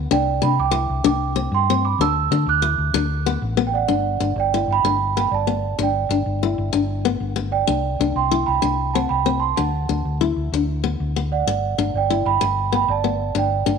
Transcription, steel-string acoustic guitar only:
0.11 D4
0.42 D4
0.71 E4
1.04 D4
1.36 C4
1.70 C4
2.01 D4
2.32 D4
2.62 E4
2.94 D4
3.26 B3
3.57 B3
3.88 D4
4.20 D4
4.54 E4
4.85 D4
5.17 B3
5.47 B3
5.79 D4
6.11 D4
6.43 E4
6.73 D4
7.05 B3
7.36 B3
7.67 D4
8.01 D4
8.31 E4
8.62 D4
8.95 C4
9.26 C4
9.57 D4
9.89 D4
10.21 E4
10.54 D4
10.84 B3
11.16 B3
11.47 muted steel-string acoustic guitar stroke
11.78 D4
12.10 E4
12.41 muted steel-string acoustic guitar stroke
12.72 B3
13.04 B3
13.35 D4
13.66 D4

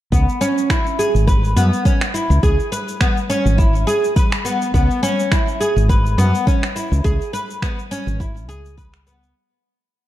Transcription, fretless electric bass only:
0.12 C#2
1.15 G#1
1.56 F#2
2.30 C#2
2.43 C#2
3.45 G#1
4.74 C#2
5.76 G#1
6.18 F#2
6.92 C#2
7.05 C#2
8.07 G#1
8.49 C#2

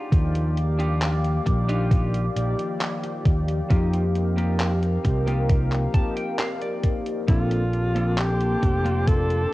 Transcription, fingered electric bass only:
0.12 D#2
1.47 A#1
2.36 A#1
3.26 D#2
3.70 F2
5.05 C2
7.28 A#1
8.63 F1

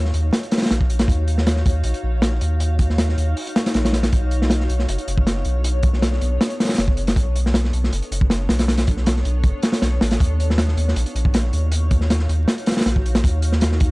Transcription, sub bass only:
Already playing: D#2
0.14 D#2
0.71 A#1
1.08 D#2
1.66 D#2
1.84 A#1
2.03 A#1
2.41 D#2
3.17 D#2
3.75 A#1
4.13 B1
4.69 B1
4.88 F#1
5.08 F#1
5.45 B1
6.21 B1
6.78 F#1
7.16 B1
7.73 B1
7.92 F#1
8.11 F#1
8.49 B1
9.25 B1
9.44 F#1
9.82 B1
10.01 A1
10.20 D#2
10.77 D#2
10.96 A#1
11.15 A#1
11.53 D#2
12.29 D#2
12.86 A#1
13.24 D#2
13.81 D#2

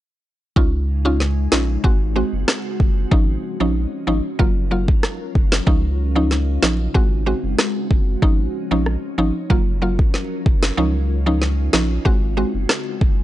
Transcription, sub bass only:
0.56 C#2
1.52 A#1
1.84 G#1
2.33 F#1
2.80 F#1
3.12 G#1
3.60 A#1
4.07 G#1
4.40 F#1
5.35 F#1
5.67 C#2
6.63 A#1
6.95 G#1
7.43 F#1
7.91 F#1
8.22 G#1
8.71 A#1
9.18 G#1
9.50 F#1
10.46 F#1
10.78 C#2
11.73 A#1
12.06 G#1
12.54 F#1
13.01 F#1

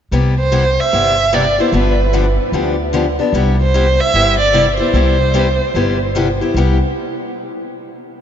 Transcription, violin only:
0.40 C5
0.80 E5
1.35 D5
1.61 C5
1.78 B4
3.61 C5
4.00 E5
4.39 D5
4.79 C5

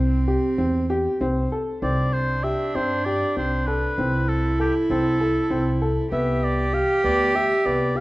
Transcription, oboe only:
1.83 D5
2.13 C5
2.44 E5
2.75 C5
3.05 D5
3.37 C5
3.66 B4
4.28 A4
4.61 G4
4.91 A4
6.13 E5
6.44 D5
6.74 F5
7.05 D5
7.36 E5
7.66 D5
7.97 F5

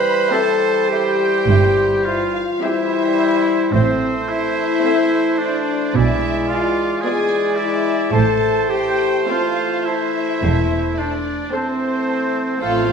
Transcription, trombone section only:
Already playing: E3 G3
2.60 E3 G3
3.74 E3 A3
5.96 E3 G#3
7.04 E3 G#3
8.15 E3 A3
11.54 E3 A3
12.60 F3 C4

